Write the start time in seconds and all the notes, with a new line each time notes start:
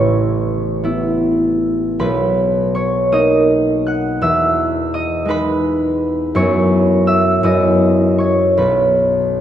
Already playing: A1 B3 E4 B4 C#5 E5 B5 C#6 E6
0.84 B3 E4
1.99 B1 B4 B5
2.75 C#5 C#6
3.12 A#3 D#4 D#5 D#6
3.87 F#5 F#6
4.21 E2 E5 E6
4.94 D#5 D#6
5.25 G#3 D#4 B4
5.30 B5
6.35 F#2 B3 E4 C#5 C#6
7.07 E5 E6
7.43 F#2 B3 E4 D#5 D#6
8.18 C#5 C#6
8.57 B1 B4 B5